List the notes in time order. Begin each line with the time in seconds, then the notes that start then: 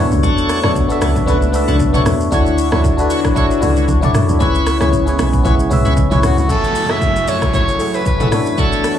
Already playing: E2 A3 B3 D4 E4 F#4
0.00 A4 C#5
0.12 C#2, shaker
0.23 E2 D4 F#4 A4 C#5, kick, shaker
0.38 shaker
0.49 cross-stick, open hi-hat, shaker
0.62 E2 B3 D4 F#4 A4 C#5, cross-stick
0.75 kick, shaker
0.88 B3 D4 F#4 A4 E5, shaker
1.01 C#2 D4 F#4 A4 C#5, cross-stick, open hi-hat, shaker
1.16 kick, shaker
1.26 C#2 B3 D4 F#4 A4 B4 C#5, kick, shaker
1.42 shaker
1.52 B3 D4 F#4 A4 E5, open hi-hat, shaker
1.68 C#2 D4 F#4 A4 C#5, shaker
1.80 kick, shaker
1.93 B3 D4 F#4 A4 C#5, mid tom, shaker
2.06 E2, cross-stick, open hi-hat, shaker
2.20 shaker
2.31 D2 D3 D4 E4 F#4 A4 C#5, kick, shaker
2.46 shaker
2.58 open hi-hat, shaker
2.71 D2 D4 E4 F#4 A4 C#5, cross-stick
2.84 kick, shaker
2.97 D4 E4 F#4 A4 B4, shaker
3.10 E2 E4 F#4 C#5, open hi-hat, shaker
3.25 kick, cross-stick, shaker
3.35 D4 E4 F#4 A4 C#5, kick, shaker
3.51 shaker
3.61 C#2 D4 E4 F#4 A4 C#5, open hi-hat, shaker
3.76 E4 F#4 C#5, shaker
3.88 D2, kick, shaker
4.01 D4 E4 F#4 A4 C#5 D5, mid tom, shaker
4.14 F#2, cross-stick, open hi-hat, shaker
4.29 D2, shaker
4.39 C#2 C#3 G#3 B3 C#4 E4 G#4 B4 C#5, kick, shaker
4.55 shaker
4.67 cross-stick, open hi-hat, shaker
4.80 C#2 C#4 E4 G#4 B4 C#5, cross-stick, shaker
4.93 kick, shaker
5.06 C#4 E4 G#4 B4 C#5, shaker
5.18 B1 E4 B4 C#5, cross-stick, open hi-hat, shaker
5.33 kick, shaker
5.43 B1 C#4 E4 G#4 B4 C#5, kick, shaker
5.59 shaker
5.70 B1 C#4 E4 G#4 B4 E5, mid tom, open hi-hat, shaker
5.85 C#2 E4 B4 C#5, shaker
5.97 kick, shaker
6.10 B1 C#4 E4 G#4 B4 C#5, mid tom, shaker
6.23 C#2 F#4, cross-stick, open hi-hat, shaker
6.37 C#2 F#4, shaker
6.48 F#2 F#3 A3 E4 F#4 A4 C#5 G#5, kick, downlifter, shaker
6.64 shaker
6.75 open hi-hat, shaker
6.88 A3 E4 F#4 G#4 A4 C#5 E5, cross-stick
7.01 kick, shaker
7.16 shaker
7.27 E4 F#4 A4 C#5, open hi-hat, shaker
7.42 kick, cross-stick, shaker
7.53 E4 F#4 A4 C#5, kick, shaker
7.68 shaker
7.78 A3 E4 F#4 G#4 C#5, open hi-hat, shaker
7.94 E4 F#4 A4 B4, shaker
8.06 B4, kick, shaker
8.19 A3 E4 F#4 G#4 A4 E5, mid tom, shaker
8.31 E2 E3 B3 D4 F#4 A4 C#5, cross-stick, open hi-hat, shaker
8.46 shaker
8.58 D4 E4 F#4 A4 C#5, kick, shaker
8.72 shaker
8.84 cross-stick, open hi-hat, shaker